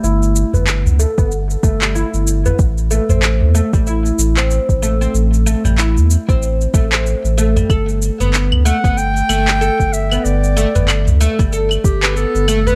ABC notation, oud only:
X:1
M:4/4
L:1/16
Q:"Swing 16ths" 1/4=94
K:Gmix
V:1 name="Oud"
E3 B,3 A, B, z2 A, G, E3 B, | z2 A, C z2 A, G, E3 C3 A, C | z2 A, G, E3 C3 A, C z2 A, G, | A z2 B,3 A, B, z2 A, G, A z2 B,- |
B,2 A, B, z2 A, G, A z2 B,3 A, B, |]